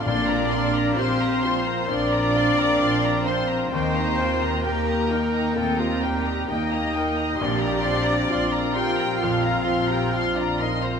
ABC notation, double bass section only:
X:1
M:4/4
L:1/8
Q:1/4=66
K:Bb
V:1 name="Double bass section" clef=bass
B,,,2 B,,,2 B,,,2 B,,,2 | E,,2 E,,2 E,,2 E,,2 | B,,,2 B,,,2 B,,,2 B,,,2 |]